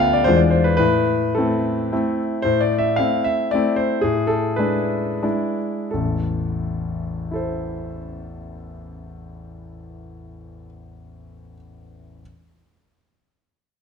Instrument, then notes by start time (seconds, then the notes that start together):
grand piano
Already playing: D2 A3 B3 F4 E5 G5
0.00 F5
0.13 D5
0.24 E2 G#3 D4 F4 C5
0.36 D5
0.50 C5
0.64 B4
0.77 A2 B4
1.35 A3 C4 E4 A4
1.92 A3 C4 E4
2.42 A2 C5
2.61 D5
2.78 E5
2.96 A3 C4 E4 F5
3.24 E5
3.51 A3 C4 E4 D5
3.76 C5
4.01 A2 G#4
4.27 A4
4.56 G#3 D4 E4 B4
5.23 G#3 D4 E4
5.91 A1 E2 A4
7.31 E4 A4
7.36 C5